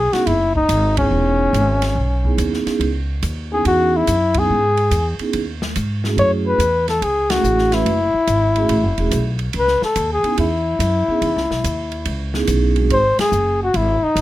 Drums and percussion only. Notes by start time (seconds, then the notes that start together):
0.13 snare, ride
0.27 ride
0.56 kick
0.69 hi-hat pedal, ride
0.97 kick, ride
1.54 hi-hat pedal, ride
1.82 snare, ride
2.25 kick
2.38 hi-hat pedal, ride
2.53 snare
2.67 snare, ride
2.81 ride
3.23 hi-hat pedal, ride
3.65 ride
4.07 hi-hat pedal, ride
4.34 kick, ride
4.77 ride
4.91 hi-hat pedal, ride
5.19 ride
5.33 ride
5.62 snare
5.76 hi-hat pedal, ride
6.04 snare
6.18 ride
6.60 hi-hat pedal, ride
6.88 snare, ride
7.02 ride
7.30 snare, ride
7.44 hi-hat pedal
7.58 snare
7.72 snare, ride
7.86 ride
8.27 hi-hat pedal, ride
8.56 ride
8.69 ride
8.98 ride
9.11 hi-hat pedal, ride
9.39 ride
9.53 ride
9.68 snare
9.82 snare
9.96 hi-hat pedal, ride
10.24 ride
10.38 ride
10.80 hi-hat pedal, ride
11.22 ride
11.37 snare
11.51 snare
11.64 hi-hat pedal, ride
11.92 ride
12.05 ride
12.34 snare
12.47 hi-hat pedal, ride
12.76 ride
12.90 ride
13.19 snare, ride
13.32 hi-hat pedal
13.74 ride
14.16 hi-hat pedal, ride